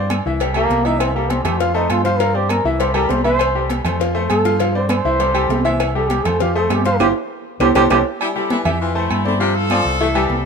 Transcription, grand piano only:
Already playing: C4 C5 D5
0.26 E3 E4 E5
0.41 G3 G4 A4
0.56 G3 G4 A4
0.86 E3 E4 E5
1.16 G3 G4 A4
1.45 A3 A4 C5
1.60 F3 F4 F5
1.74 A3 A4 C5
2.05 F3 F4 F5
2.19 F3 F4 F5
2.34 C4 C5 D5
2.65 E3 E4 E5
2.80 G3 G4 A4
2.94 G3 G4 A4
3.25 E3 E4 E5
3.55 G3 G4 A4
3.85 A3 A4 C5
4.00 F3 F4 F5
4.15 A3 A4 C5
4.45 F3 F4 F5
4.60 F3 F4 F5
4.75 C4 C5 D5
5.05 E3 E4 E5
5.20 G3 G4 A4
5.34 G3 G4 A4
5.64 E3 E4 E5
5.95 G3 G4 A4
6.25 A3 A4 C5
6.41 F3 F4 F5
6.55 A3 A4 C5
6.86 F3 F4 F5
7.00 F4 G4 C5
7.61 G4 A4 C5
7.76 G4 A4 C5
7.91 G4 A4 C5
8.36 G3 G4 A4
8.65 E3 E4 E5
8.95 A3 A4 C5
9.25 C4 C5 D5
9.40 F3 F4 F5
9.71 C4 C5 D5
10.01 E3 E4 E5
10.15 G3 G4 A4

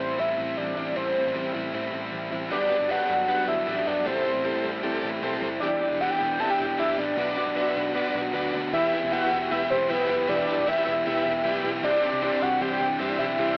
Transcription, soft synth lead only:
Already playing: C5
0.19 E5
0.57 D5
0.96 C5
2.51 D5
2.91 F#5
3.28 F#5
3.48 E5
3.87 D5
4.06 C5
5.60 D5
6.01 F#5
6.10 G5
6.40 A5
6.50 G5
6.79 E5
6.98 D5
8.73 E5
9.12 F#5
9.51 E5
9.71 C5
9.90 B4
10.29 D5
10.68 E5
11.84 D5
12.42 F#5
12.61 G5
13.18 E5

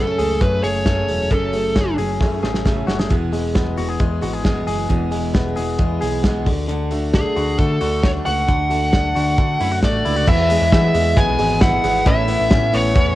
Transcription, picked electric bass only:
0.19 C#2
0.41 F#2
0.64 F#1
1.09 E1
1.31 F#1
1.98 F#1
2.21 F#2
2.43 A1
2.88 F#1
3.11 E1
3.78 E1
4.00 E2
4.22 G#1
4.67 F#1
4.90 E1
5.57 E1
5.79 E2
6.02 B1
6.47 D2
7.37 D2
7.59 D3
7.82 D2
8.27 C#2
8.48 D2
9.16 D2
9.38 D3
9.61 F#2
9.83 A1
10.06 C#2
10.28 E2
10.62 E2
10.72 E3
10.94 E2
11.17 B1
11.39 G#1
11.84 G#1
12.06 A1
12.40 A1
12.52 A2
12.74 A1
12.96 E2

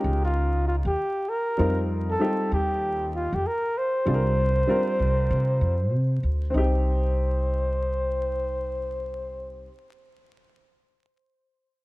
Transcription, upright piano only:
Already playing: G#3 C#4 D#4 F4 A#4
1.57 G3 C4 D#4 F4 A#4
2.19 G3 C4 D#4 F4 G4
4.05 G3 C4 D4 F4 G#4
4.14 A#4
4.67 G3 C4 D4 F4 A#4
6.50 C4 D#4
6.57 G4

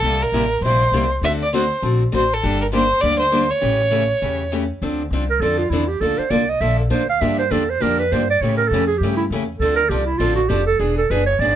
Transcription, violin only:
Already playing: A4
0.22 A#4
0.64 C5
1.25 E5
1.43 D5
1.55 C5
2.15 C5
2.34 A4
2.62 A#4
2.73 C5
3.01 D5
3.19 C5
3.50 C#5

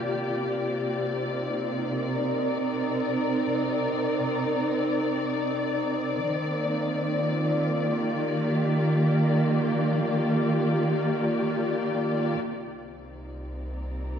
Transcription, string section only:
Already playing: A#3 F4 G4 D5
0.04 C3
0.55 C4
1.10 D#4
1.73 A#4
6.23 D#3
6.43 A#3
7.12 F4
7.93 G4
12.44 C3
12.79 C4
12.92 D#4
13.56 A#4

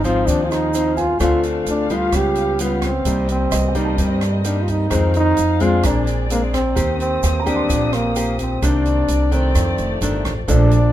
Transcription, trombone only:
0.05 F4
0.27 D4
0.45 F4
0.51 D#4
0.98 F4
1.21 F4
1.70 D4
1.93 F4
2.16 G4
2.62 B3
2.86 C4
3.31 C4
3.77 D#4
4.00 C4
4.46 D4
4.62 F4
4.70 D#4
5.17 D#4
5.63 F4
5.86 D4
6.32 A#3
6.54 C4
7.00 C4
7.47 D4
7.94 A#3
8.41 C4
8.64 D4
9.34 C4
10.50 D4

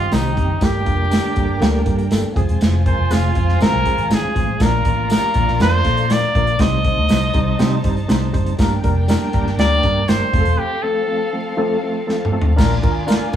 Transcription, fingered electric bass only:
0.12 C2
0.37 F#1
0.61 G1
0.87 F1
1.37 G1
1.49 G1
1.61 D2
1.86 G2
2.11 G1
2.37 F1
2.49 E1
2.61 F1
2.99 F1
3.11 F1
3.37 F2
3.61 G#1
3.73 C2
3.98 G#1
4.11 G#1
4.36 A1
4.60 A#1
4.86 A1
5.36 A#1
5.49 A#1
5.60 F2
5.85 A#2
6.35 A#1
6.59 C2
6.97 D2
7.10 C2
7.35 C2
7.59 C3
7.84 G1
8.09 C2
8.35 F#1
8.59 G1
8.84 F1
9.34 G1
9.46 G1
9.58 D2
9.84 G2
10.09 G1
10.34 F1
10.45 E1
12.58 A#1
12.84 G#1

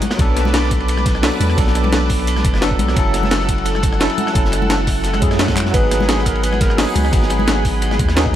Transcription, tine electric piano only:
0.17 F#3 B3 D4
0.21 A4
1.22 F#3 B3 D4 A4
1.55 F#3 B3 D4
1.60 A4
2.61 F#3 B3 D4 A4
2.94 F#3 C#4 E4
2.99 A4
3.99 F#3 C#4 E4 A4
4.32 F#3 C#4 E4
4.37 A4
5.21 F#3 C#4 E4 G#4
5.72 F#3 B3 D#4
5.76 G#4
6.77 F#3 B3 D#4 G#4
7.11 F#3 B3 D#4
7.15 G#4
8.16 F#3 B3 D#4 G#4

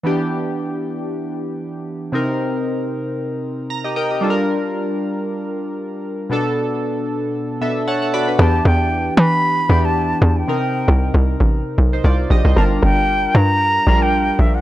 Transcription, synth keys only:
0.03 E3 B3 D4 G4
2.12 C3 C4 D#4 A#4
3.70 A#5
3.84 G4 D#5
3.96 A#4 D#5 G5
4.11 G4 D#5
4.21 G3 D4 F4 A4
4.30 A#4
6.30 B2 B3 D4 A4
7.61 B2 B3 D4 A4 E5
7.88 C#5 F#5 A5
8.02 A4 F#5
8.14 F#4 D5 B5
8.28 D4 B4
8.39 E3 B3 D4 G4
9.69 E3 B3 D4 G4
10.48 C3 C4 D#4 A#4
11.93 D#4 C5
12.05 F4 D5
12.31 G4 D#5
12.45 D#4 C5
12.56 G3 D4 F4 A#4
13.87 G3 D4 F4 A#4

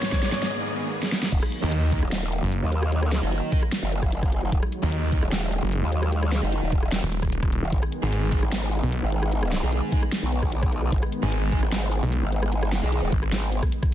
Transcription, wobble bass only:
1.32 D#1
2.03 D#1
2.63 D#2
3.04 D2
3.23 F#1
3.83 F#1
4.52 D#1
5.23 D#1
5.83 D#2
6.24 D2
6.43 F#1
6.63 D#1
7.63 D#1
7.72 G#1
8.43 G#1
9.03 G#1
9.63 B1
10.23 B1
10.92 G#1
11.63 G#1
12.23 G#1
12.64 G1
12.83 B1
13.03 D#1
13.32 G#1

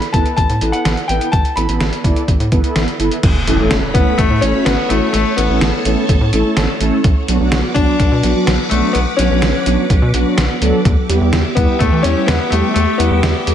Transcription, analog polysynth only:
0.14 B3 E4 A4 B4
0.61 B3 E4 A4 B4
0.73 B3 E4 A4 B4
1.09 B3 E4 A4 B4
1.57 B3 E4 A4 B4
1.69 B3 E4 A4 B4
2.04 B3 E4 A4 D5
2.52 B3 E4 A4 B4
2.64 B3 E4 A4 B4
2.99 B3 E4 A4 B4
3.47 A3 C#4 E4 A4
3.59 A3 C#4 E4 A4
3.95 A3 C#4 E4 A4
4.42 A3 C#4 E4 A4
4.54 A3 C#4 E4 F#4
4.90 A3 C#4 E4 F#4
5.38 A3 C#4 E4 A4
5.50 A3 C#4 E4 A4
5.86 A3 C#4 E4 A4
6.33 A3 C#4 E4 A4
6.45 A3 C#4 E4 A4
6.81 A3 C#4 E4 A4
7.28 F#3 B3 D4 F#4
7.40 F#3 B3 D4 F#4
7.76 F#3 B3 D4 F#4
8.24 F#3 B3 D4 F#4
8.36 F#3 B3 D4 F#4
8.71 F#3 B3 D4 F#4
9.19 F#3 B3 D4 F#4
9.31 F#3 B3 D4 F#4
9.66 F#3 B3 D4 F#4
10.14 F#3 B3 D4 F#4
10.26 F#3 B3 D4 F#4
10.62 F#3 B3 D4 A4
11.09 G3 B3 E4 G4
11.21 G3 B3 E4 G4
11.57 G3 B3 E4 G4
12.04 G3 B3 E4 G4
12.16 G3 B3 E4 G4
12.52 G3 B3 E4 G4
13.00 G3 B3 E4 G4
13.12 G3 B3 E4 G4
13.47 G3 B3 E4 A4

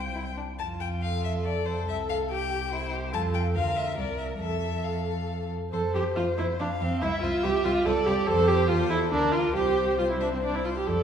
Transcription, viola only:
Already playing: C5
1.02 A4
1.87 A4
2.31 G4
2.71 C5
3.13 A4
3.55 A#4
3.97 A#4
4.40 A4
5.73 A4
5.95 G4
6.16 F4
6.38 E4
6.60 D4
6.81 C4
7.02 E4
7.22 F4
7.44 G4
7.65 F4
7.85 A4
8.06 G4
8.27 A4
8.48 G4
8.68 F4
8.90 E4
9.11 D4
9.32 F4
9.54 G4
9.98 F4
10.10 E4
10.21 D4
10.33 C4
10.43 D4
10.55 E4
10.65 F4
10.77 G4
10.87 A4

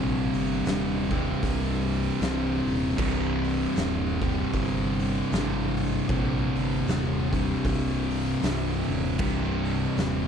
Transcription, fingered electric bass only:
Already playing: A#1
0.34 G1
0.65 D#1
1.43 C1
2.20 C1
2.66 D#1
2.99 C1
3.76 D#1
4.54 G1
5.31 G#1
6.09 A#1
6.55 G1
6.87 D#1
7.65 C1
8.42 C1
8.88 D#1
9.19 C1
9.97 D#1

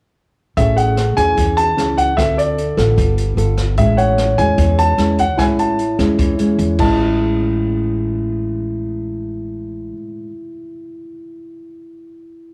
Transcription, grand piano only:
0.57 E5
0.77 F#5
1.17 G#5
1.57 A5
1.98 F#5
2.17 E5
2.38 D5
3.78 E5
3.97 F#5
4.38 G#5
4.79 A5
5.19 F#5
5.39 G#5
5.60 A5
6.80 A5

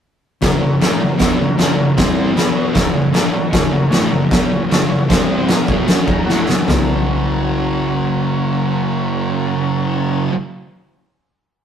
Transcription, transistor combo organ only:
0.42 C#4 F#4 A#4
0.61 C#4 F#4 A#4
0.82 C#4 F#4 A#4
1.01 C#4 F#4 A#4
1.21 C#4 F#4 A#4
1.42 C#4 F#4 A#4
1.63 C#4 F#4 A#4
1.80 C#4 F#4 A#4
1.97 C4 G4 C5
2.18 C4 G4 C5
2.37 B3 F#4 B4
2.54 B3 F#4 C#5
2.73 C#4 F#4 A#4
2.93 C#4 F#4 G#4
3.13 C#4 F#4 A#4
3.33 C#4 F#4 A#4
3.52 C#4 F#4 C#5
3.72 C#4 F#4 A#4
3.89 C#4 F#4 G#4
4.10 C#4 F#4 A#4
4.30 C#4 F#4 A#4
4.53 C#4 F#4 G#4
4.72 C#4 F#4 C#5
4.89 C#4 F#4 C#5
5.10 C4 G4 C5
5.32 C4 G4 C5
5.48 C#4 F#4 A#4
5.68 C#4 F#4 G#4
5.88 C#4 F#4 G#4
6.07 C#4 F#4 A#4 A#5
6.25 C#4 F#4 A#4 F#5
6.47 C#4 F#4 G#4
6.65 C#4 F#4 A#4

